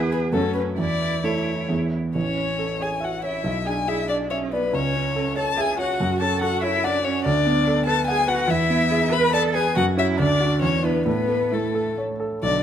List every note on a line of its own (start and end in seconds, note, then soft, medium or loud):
0.00 0.36 E2 medium
0.00 0.29 B3 soft
0.00 0.29 E4 soft
0.00 0.33 G#4 medium
0.00 0.29 B4 soft
0.12 0.20 B4 medium
0.33 0.76 F#2 soft
0.33 0.74 A3 soft
0.33 0.74 C#4 soft
0.33 0.77 C#4 soft
0.33 0.74 F#4 soft
0.33 0.54 A4 medium
0.54 0.62 B4 medium
0.78 1.23 E2 soft
0.78 1.90 E4 soft
0.78 1.26 D5 medium
1.24 1.66 A3 soft
1.24 1.66 E4 soft
1.24 1.66 A4 soft
1.24 1.70 C#5 medium
1.69 2.13 E2 soft
1.69 2.11 B3 soft
1.69 2.11 E4 soft
1.69 2.11 G#4 soft
2.14 3.40 A1 soft
2.14 2.75 C#4 soft
2.14 2.83 C#5 medium
2.36 2.71 C#4 soft
2.58 2.93 A4 soft
2.80 2.88 G#4 soft
2.80 3.14 C#5 soft
2.80 3.06 G#5 medium
3.00 3.21 F#4 soft
3.00 3.35 E5 soft
3.05 3.24 F#5 medium
3.22 3.64 E4 soft
3.22 3.44 C#5 soft
3.22 3.68 E5 medium
3.44 4.69 B1 soft
3.65 4.01 D4 soft
3.65 3.73 G#4 soft
3.65 3.90 G#5 medium
3.88 4.08 E4 medium
3.88 4.23 G#4 soft
3.88 4.08 E5 medium
4.08 4.30 D4 medium
4.08 4.17 D5 medium
4.08 4.44 D5 soft
4.30 4.53 C#4 soft
4.30 4.38 C#5 medium
4.30 4.65 E5 soft
4.51 4.73 B3 soft
4.51 4.76 B4 medium
4.51 4.74 D5 soft
4.73 5.96 C#2 soft
4.73 5.35 C#4 medium
4.73 5.37 C#5 medium
4.95 5.28 C#4 soft
5.16 5.49 A4 soft
5.36 5.44 A4 medium
5.36 5.70 C#5 soft
5.36 5.62 A5 medium
5.56 5.77 G#4 medium
5.56 5.92 E5 soft
5.60 5.80 G#5 medium
5.78 6.22 F#4 medium
5.78 6.00 C#5 soft
5.78 6.20 F#5 medium
6.00 7.21 F#2 medium
6.21 6.54 C#4 soft
6.21 6.43 A4 medium
6.21 6.41 A5 medium
6.41 6.64 F#4 medium
6.41 6.74 A4 soft
6.41 6.62 F#5 medium
6.62 6.85 E4 medium
6.62 6.96 C#5 soft
6.62 6.86 E5 medium
6.84 7.04 D4 medium
6.84 7.06 D5 medium
6.84 7.17 F#5 soft
7.04 7.26 C#4 medium
7.04 7.24 C#5 medium
7.04 7.25 C#5 soft
7.25 8.46 D2 medium
7.25 7.85 D4 medium
7.25 7.85 D5 medium
7.46 7.79 B3 soft
7.67 8.00 A4 soft
7.86 7.94 A4 medium
7.86 8.20 B4 soft
7.86 8.07 A5 medium
8.07 8.28 G#4 medium
8.07 8.41 F#5 soft
8.07 8.30 G#5 medium
8.28 8.50 F#4 medium
8.28 8.49 B4 medium
8.28 8.52 F#5 medium
8.48 9.71 E2 medium
8.48 9.13 E4 medium
8.48 9.14 E5 medium
8.70 9.04 B3 soft
8.91 9.25 G#4 medium
9.11 9.33 B4 medium
9.11 9.46 B4 soft
9.11 9.33 B5 medium
9.33 9.56 A4 medium
9.33 9.67 D5 medium
9.33 9.42 A5 medium
9.54 9.74 G#4 medium
9.54 9.76 B4 medium
9.54 9.75 G#5 medium
9.75 10.17 F#2 medium
9.75 9.83 F#4 medium
9.75 9.85 F#5 medium
9.96 10.16 C#4 soft
9.96 10.18 E4 medium
9.96 10.16 F#4 soft
9.96 10.07 E5 medium
10.17 10.60 D2 medium
10.17 10.60 D4 medium
10.17 10.61 D5 medium
10.40 10.59 D4 soft
10.40 10.59 F#4 soft
10.60 11.05 E2 medium
10.60 10.81 C#4 medium
10.60 10.87 C#5 medium
10.82 11.05 B3 medium
10.82 11.03 D4 soft
10.82 11.03 E4 soft
10.82 11.06 B4 medium
11.06 12.38 A2 medium
11.06 11.54 B3 medium
11.06 11.55 B4 medium
11.29 11.65 A3 soft
11.52 11.98 A3 soft
11.52 11.88 E4 soft
11.52 11.98 A4 medium
11.74 12.11 A4 soft
11.98 12.34 C#5 soft
12.20 12.42 A4 soft
12.43 12.63 B1 soft
12.43 12.63 D3 medium
12.43 12.63 D5 medium